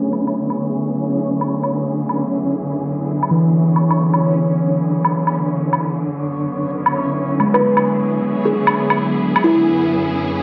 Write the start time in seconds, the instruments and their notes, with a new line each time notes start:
Already playing: string section D3 F#3 B3 E4 G#4, tine electric piano A3, synth texture C#4 C#5
0.13 low woodblock
0.27 low woodblock
0.50 low woodblock
1.41 low woodblock
1.64 low woodblock
2.09 low woodblock
3.23 low woodblock
3.31 tine electric piano E3
3.76 low woodblock
3.91 low woodblock
4.14 low woodblock
5.05 low woodblock
5.27 low woodblock
5.73 low woodblock
6.17 string section F#3 B3
6.86 string section E4, low woodblock
7.35 string section G#4
7.40 tine electric piano G#3, low woodblock
7.54 kalimba B4, low woodblock
7.77 low woodblock
8.45 kalimba G#4
8.67 low woodblock
8.90 low woodblock
9.36 low woodblock
9.44 kalimba E4
9.68 string section F#2